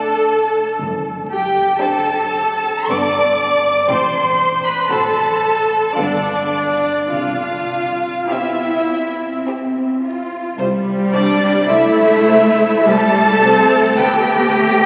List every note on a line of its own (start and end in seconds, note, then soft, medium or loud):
0.00 0.58 A3 soft
0.00 0.58 D4 medium
0.00 0.81 A4 medium
0.00 0.82 A5 medium
0.81 1.61 F#1 medium
0.81 1.61 F#2 medium
1.30 1.76 G4 medium
1.30 1.77 G5 medium
1.80 2.64 C4 medium
1.80 2.64 D4 medium
1.80 2.88 A4 medium
1.80 2.90 A5 medium
2.89 3.71 G1 medium
2.89 3.71 G2 medium
2.89 3.67 B3 medium
2.89 3.66 D4 medium
2.89 3.90 D5 medium
2.89 3.90 D6 loud
3.89 4.72 A1 medium
3.89 4.71 A2 medium
3.89 4.66 C4 medium
3.89 4.66 G4 medium
3.89 4.64 C5 medium
3.89 4.64 C6 loud
4.64 4.91 B4 medium
4.64 4.90 B5 medium
4.90 5.78 A1 medium
4.90 5.77 A2 medium
4.90 5.72 C4 medium
4.90 5.72 F#4 medium
4.90 5.96 A4 medium
4.90 5.98 A5 loud
5.97 6.91 G1 medium
5.97 6.91 G2 medium
5.97 6.85 B3 medium
5.97 7.12 D4 medium
5.97 6.84 F4 medium
5.97 7.13 D5 medium
7.12 8.09 C2 medium
7.12 8.09 C3 medium
7.12 8.28 F4 medium
7.12 8.28 F5 medium
8.30 8.86 B3 medium
8.30 9.20 C4 medium
8.30 9.46 E4 medium
8.30 9.20 G4 medium
8.30 9.46 E5 medium
8.90 10.03 C4 medium
9.47 10.33 C4 medium
9.47 10.33 G4 medium
10.04 10.59 F4 medium
10.58 10.66 C2 medium
10.58 11.63 G3 medium
10.58 10.66 C5 medium
11.12 11.20 C2 medium
11.12 11.63 D4 loud
11.12 11.20 C5 medium
11.12 11.64 D5 medium
11.68 11.76 C2 medium
11.68 12.87 A3 loud
11.68 12.87 E4 loud
11.68 11.76 C5 medium
11.68 12.87 E5 medium
12.27 12.35 C2 medium
12.27 12.35 C5 medium
12.87 12.95 C2 medium
12.87 13.43 G3 medium
12.87 13.96 A4 loud
12.87 12.96 C5 medium
12.87 13.96 A5 loud
13.43 13.51 C2 medium
13.43 13.96 C4 medium
13.43 13.51 C5 medium
13.96 14.04 D2 medium
13.96 14.46 B3 medium
13.96 14.86 G4 loud
13.96 14.05 B4 medium
13.96 14.86 G5 loud
14.47 14.55 D2 medium
14.47 14.86 A3 medium
14.47 14.56 B4 medium